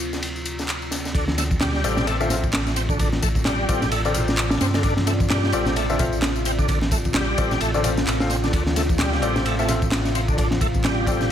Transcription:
Already playing: D2 C4 F4 A4 D5
0.00 tambourine
0.13 snare, tambourine
0.23 ride, tambourine
0.36 tambourine
0.45 ride, tambourine
0.59 snare, tambourine
0.69 clap, ride, tambourine
0.82 tambourine
0.91 snare, ride, tambourine
1.05 snare, tambourine
1.14 D2 D3 C4 F4 D5, kick, ride, tambourine
1.28 snare, high conga
1.38 A3, snare, ride, tambourine
1.50 kick, tambourine, high conga
1.61 G3, snare, clap, ride, tambourine, low conga
1.74 snare
1.84 A1 C4 F4 A4 D5, ride, tambourine
1.97 snare, tambourine, low conga
2.07 A3, ride, tambourine
2.20 D3 C4 F4 A4 E5, tambourine
2.30 F3 C4 F4 A4 E5, snare, ride, tambourine, low conga
2.44 kick, tambourine
2.53 snare, clap, ride, tambourine
2.67 snare, tambourine
2.76 C4, ride, tambourine
2.89 D3, kick, tambourine
2.99 D3, kick, ride, tambourine
3.13 snare, high conga
3.23 A3, kick, ride, tambourine
3.35 kick, tambourine, high conga
3.45 G3, snare, clap, ride, tambourine, low conga
3.69 A1 C4 F4 A4 D5, kick, ride, tambourine
3.81 snare, tambourine, low conga
3.91 A3, ride, tambourine
4.05 D3 C4 F4 A4 D5, tambourine
4.14 F3, ride, tambourine, low conga
4.28 snare, tambourine
4.37 clap, ride, tambourine
4.50 snare, tambourine
4.61 G2 C4, snare, ride, tambourine
4.74 D3, snare, ride, tambourine
4.83 D3, kick, ride, tambourine
4.97 snare, high conga
5.06 A3, snare, ride, tambourine
5.20 kick, tambourine, high conga
5.30 G3, snare, clap, ride, tambourine, low conga
5.44 snare
5.52 A1 C4 F4 A4 D5, ride, tambourine
5.66 snare, tambourine, low conga
5.76 A3, ride, tambourine
5.90 D3 C4 F4 A4 E5, tambourine
5.99 F3 C4 F4 A4 E5, kick, ride, tambourine, low conga
6.13 tambourine
6.22 snare, clap, ride, tambourine
6.36 tambourine
6.45 C4, ride, tambourine
6.59 D3, kick, tambourine
6.68 D3, kick, ride, tambourine
6.81 snare, high conga
6.91 A3, kick, ride, tambourine
7.04 kick, tambourine, high conga
7.14 G3, snare, clap, ride, tambourine, low conga
7.38 A1 C4 F4 A4 D5, kick, ride, tambourine
7.51 snare, tambourine, low conga
7.61 A1 A3, ride, tambourine
7.74 D3 C4 F4 A4 D5, tambourine
7.84 F3 C4 F4 A4 D5, ride, tambourine, low conga
7.97 snare, tambourine
8.07 A1, clap, ride, tambourine
8.20 C4 F4 A4 F5, snare, tambourine
8.30 C4, snare, ride, tambourine
8.44 D3, snare, tambourine
8.53 D2 D3 F5, kick, ride, tambourine
8.66 snare, high conga
8.76 A3, snare, ride, tambourine
8.89 kick, tambourine, high conga
8.99 G3, snare, clap, ride, tambourine, low conga
9.12 snare
9.22 A1 C4 F4 A4 D5, ride, tambourine
9.36 snare, tambourine, low conga
9.46 A3, ride, tambourine
9.59 A3 C4 F4 A4 E5, tambourine
9.68 F3 C4 F4 A4 E5, snare, ride, tambourine, low conga
9.82 kick, tambourine
9.92 snare, clap, ride, tambourine
10.05 snare, tambourine
10.15 C4, ride, tambourine
10.28 D3, kick, tambourine
10.38 D3, kick, ride, tambourine
10.51 snare, high conga
10.61 A3, kick, ride, tambourine
10.74 kick, tambourine, high conga
10.84 G3, snare, clap, ride, tambourine, low conga
11.07 A1 C4 F4 A4 D5, kick, ride, tambourine
11.21 snare, tambourine, low conga

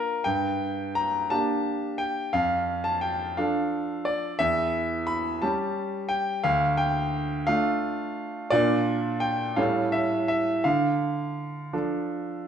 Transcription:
Already playing: A#3 D4 F4 A#4
0.24 G2 G5
0.95 A#5
1.30 A#3 D4 G4 A5
1.98 G5
2.33 F2 F5
2.84 A5
3.01 G5
3.37 F3 D4 A4 F5
4.05 D5
4.39 E2 E5
5.07 B5
5.42 G3 C#4 G4 A5
6.09 G5
6.44 D2 F5
6.77 G5
7.47 A3 D4 F4 F5
8.50 A#2 A#3 D4 F4 D5
9.20 G5
9.56 A2 G3 C#4 A4 F5
9.92 E5
10.28 E5
10.64 D3 F5
11.73 F3 D4 A4

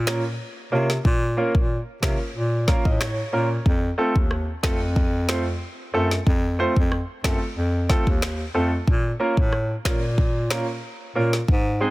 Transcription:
Already playing: A#2
0.07 A#3 C#4 F4 A#4, finger snap, snare
0.72 C3 A#3 C#4 F4 A#4
0.90 snare
1.05 A#2, kick
1.37 A#3 C#4 F4 A#4
1.55 A#2, kick
2.02 C3 A#3 C#4 F4 A#4, finger snap, kick, snare
2.35 A#2
2.67 A#3 C#4 F4 A#4 F5, kick, snare
2.85 A2 D#5, kick
3.00 C#5, finger snap, cross-stick, snare
3.33 A#2 A#3 C#4 F4 A#4
3.66 F2, kick
3.98 A3 C4 F4 A4
4.16 D#2, kick
4.31 cross-stick
4.63 F2 A3 C4 F4 A4, finger snap, kick, snare
4.96 kick
5.28 A3 C4 F4 C5, finger snap, snare
5.94 F#2 A3 C4 F4 A4
6.11 snare
6.27 F2, kick
6.59 A3 C4 F4 C5
6.76 F2, kick
6.92 cross-stick
7.24 F#2 A3 C4 F4 A4, finger snap, kick, snare
7.57 F2
7.89 A3 C4 F4 A4, kick, snare
8.07 D#2, kick
8.22 finger snap, snare
8.54 F2 A3 C4 F4 A4
8.87 A#2, kick
9.20 A#3 C#4 F4 A#4
9.37 A2, kick
9.53 cross-stick
9.85 A#2 A#3 C#4 F4 A#4, finger snap, kick, snare
10.18 kick
10.50 A#3 C#4 F4 A#4, finger snap, snare
11.15 A#2 A#3 C#4 F4 A#4
11.33 snare
11.48 G#2, kick
11.81 G#3 C4 D#4 G#4

